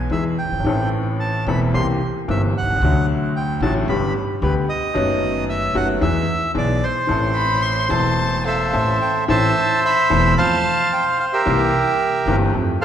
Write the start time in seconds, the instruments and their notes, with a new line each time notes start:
0.10 upright bass E2, grand piano E2 E3 G#3 B3 G#4, bandoneon E5
0.38 bandoneon G5
0.45 upright bass F#1, grand piano F#1
0.51 upright bass G1, grand piano G1
0.59 upright bass G#1, grand piano G#1
0.64 upright bass A1, grand piano A1 A2 E3 A3 C4
0.69 grand piano A4
1.20 bandoneon A5
1.47 upright bass E1, grand piano E1 E2 E3 A3 C4 A4, bandoneon B5
1.74 grand piano C2 C3 E3 A#3 C4 G4, upright bass C2, bandoneon C6
2.28 grand piano G1 G2 E3 A#3 C4 G4, upright bass G1, bandoneon E5
2.58 bandoneon F#5
2.62 upright bass B1, grand piano B1
2.68 upright bass C2, grand piano C2
2.75 upright bass C#2, grand piano C#2
2.81 upright bass D2, grand piano D2 D3 F#3 A3
2.86 grand piano F#4
3.36 bandoneon G5
3.61 upright bass A1, grand piano A1 A2 D3 F#3 A3 F#4, bandoneon A5
3.88 upright bass G1, grand piano G1 G2 D3 G3 B3 G4, bandoneon B5
4.42 upright bass D2, grand piano D2 D3 G3 B3 G4, bandoneon B4
4.69 bandoneon D#5
4.93 upright bass F#1, grand piano F#2 D#3 F#3 A3 B3 F#4
5.50 bandoneon E5
5.74 upright bass F#1, grand piano F#2 D#3 F#3 A3 B3 F#4, bandoneon F#5
6.01 grand piano E2 E3 G#3 B3 G#4, upright bass E2, bandoneon E5
6.54 grand piano B1 B2 E3 G#3 B3 G#4, upright bass B1, bandoneon D5
6.83 bandoneon C5
7.07 grand piano A1 A2 E3 A3 C4 A4, upright bass A1
7.35 violin B5
7.62 violin C6
7.89 upright bass E1, grand piano E1 E2 E3 A3 C4 A4, violin A5
8.45 bandoneon A4 C5 E5, violin F5
8.73 grand piano A1 A2 E3 A3 C4 A4, upright bass A1, violin E5
9.02 bandoneon G5
9.28 grand piano A1 A2 E3 A3 C4 A4, upright bass A1, bandoneon C5 E5 A5
9.85 bandoneon E5 B5
10.10 grand piano E1 E2 E3 A3 C4 A4, upright bass E1
10.38 upright bass F2, grand piano F2 F3 A3 C4 A4, bandoneon C5 F5 A5
10.93 bandoneon G5
11.20 bandoneon F5
11.33 bandoneon G4 A#4 E5
11.46 grand piano C2 C3 E3 A#3 C4 G4, upright bass C2
12.26 upright bass G1, grand piano G1 G2 E3 A#3 C4 G4
12.53 upright bass F2, grand piano F2 F3 A3 C4 A4
12.81 bandoneon A4 F5